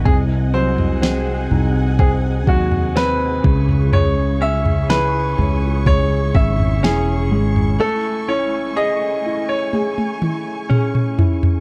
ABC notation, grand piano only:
X:1
M:4/4
L:1/16
Q:1/4=62
K:C#m
V:1 name="Grand piano"
G2 ^B4 z2 G2 F2 =B4 | c2 e2 B4 c2 e2 G4 | A2 c2 d3 c6 z3 |]